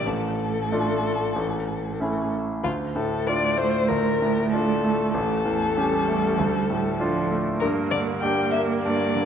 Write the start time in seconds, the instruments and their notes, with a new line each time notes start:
0.06 grand piano A1, cello A2, violin A4
0.72 grand piano A3 D4 F4
1.36 grand piano A1
2.00 grand piano A3 C#4 E4
2.64 grand piano D2, cello A3, violin F4
2.95 grand piano A2, violin A4
3.27 grand piano D4 F4, violin D5
3.58 grand piano A3, violin C5
3.88 grand piano D2, violin A#4
4.22 grand piano A2
4.51 grand piano D4 F4, violin A4
4.84 grand piano A3
5.14 grand piano A1, violin A4
5.45 grand piano E2
5.77 cello G3, grand piano C#4 G4
6.09 grand piano A3
6.39 grand piano D2
6.70 grand piano A2
7.00 cello F3, grand piano D4 F4
7.31 grand piano A3
7.60 grand piano G2, cello A#3, violin A#4
7.91 grand piano D3, violin D5
8.22 grand piano D4 G4, violin G5
8.52 grand piano A#3, violin E5
8.83 grand piano G2, violin D5
9.15 grand piano D3